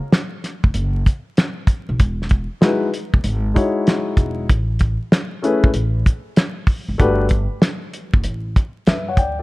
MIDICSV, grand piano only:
0, 0, Header, 1, 2, 480
1, 0, Start_track
1, 0, Tempo, 625000
1, 1532, Time_signature, 4, 2, 24, 8
1, 7238, End_track
2, 0, Start_track
2, 0, Title_t, "Grand piano"
2, 0, Program_c, 0, 0
2, 2004, Note_on_c, 0, 56, 71
2, 2009, Note_on_c, 0, 63, 62
2, 2013, Note_on_c, 0, 64, 64
2, 2019, Note_on_c, 0, 66, 63
2, 2023, Note_on_c, 0, 71, 76
2, 2199, Note_off_c, 0, 56, 0
2, 2202, Note_off_c, 0, 63, 0
2, 2204, Note_off_c, 0, 64, 0
2, 2206, Note_off_c, 0, 66, 0
2, 2209, Note_off_c, 0, 71, 0
2, 2720, Note_on_c, 0, 56, 73
2, 2726, Note_on_c, 0, 63, 65
2, 2731, Note_on_c, 0, 64, 65
2, 2736, Note_on_c, 0, 66, 64
2, 2740, Note_on_c, 0, 73, 77
2, 3413, Note_off_c, 0, 56, 0
2, 3416, Note_off_c, 0, 63, 0
2, 3419, Note_off_c, 0, 64, 0
2, 3421, Note_off_c, 0, 66, 0
2, 3424, Note_off_c, 0, 73, 0
2, 4165, Note_on_c, 0, 57, 72
2, 4171, Note_on_c, 0, 61, 71
2, 4176, Note_on_c, 0, 64, 67
2, 4180, Note_on_c, 0, 68, 65
2, 4185, Note_on_c, 0, 71, 82
2, 4360, Note_off_c, 0, 57, 0
2, 4362, Note_off_c, 0, 61, 0
2, 4365, Note_off_c, 0, 64, 0
2, 4367, Note_off_c, 0, 68, 0
2, 4370, Note_off_c, 0, 71, 0
2, 5361, Note_on_c, 0, 57, 81
2, 5366, Note_on_c, 0, 62, 74
2, 5371, Note_on_c, 0, 66, 70
2, 5377, Note_on_c, 0, 67, 69
2, 5381, Note_on_c, 0, 71, 92
2, 5558, Note_off_c, 0, 57, 0
2, 5560, Note_off_c, 0, 62, 0
2, 5563, Note_off_c, 0, 66, 0
2, 5566, Note_off_c, 0, 67, 0
2, 5568, Note_off_c, 0, 71, 0
2, 6813, Note_on_c, 0, 76, 58
2, 6819, Note_on_c, 0, 71, 47
2, 6963, Note_off_c, 0, 76, 0
2, 6966, Note_off_c, 0, 71, 0
2, 6976, Note_on_c, 0, 78, 60
2, 6980, Note_on_c, 0, 73, 55
2, 7051, Note_off_c, 0, 78, 0
2, 7053, Note_off_c, 0, 73, 0
2, 7054, Note_on_c, 0, 79, 66
2, 7058, Note_on_c, 0, 74, 56
2, 7202, Note_off_c, 0, 74, 0
2, 7203, Note_off_c, 0, 79, 0
2, 7213, Note_on_c, 0, 74, 62
2, 7238, Note_off_c, 0, 74, 0
2, 7238, End_track
0, 0, End_of_file